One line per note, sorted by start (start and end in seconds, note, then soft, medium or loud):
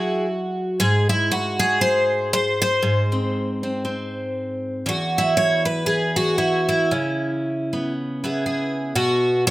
0.00 0.79 F#3 medium
0.00 0.30 E4 medium
0.00 0.81 F#4 medium
0.00 0.25 G#4 medium
0.80 2.81 G#2 medium
0.80 1.09 G#4 loud
1.09 1.31 E4 medium
1.32 1.81 F#4 medium
1.59 2.33 G#4 loud
1.81 2.32 C5 loud
2.33 2.60 C5 loud
2.62 4.87 C5 loud
2.82 4.84 G#2 medium
3.12 3.62 C4 soft
3.63 3.83 C4 soft
3.85 4.84 C4 soft
4.86 6.90 E2 medium
4.86 5.37 F#4 medium
5.18 5.86 E4 medium
5.37 5.65 C#5 medium
5.65 6.16 B4 medium
5.86 6.38 G#4 medium
6.16 6.90 F#4 medium
6.38 6.67 E4 medium
6.69 7.93 E4 medium
6.91 8.93 C#3 medium
7.73 8.23 B3 soft
8.24 9.50 B3 soft
8.24 8.93 E4 soft
8.24 8.45 G#4 soft
8.46 8.93 G#4 soft
8.95 9.51 B2 medium
8.95 9.46 F#4 medium
9.47 9.51 C#5 loud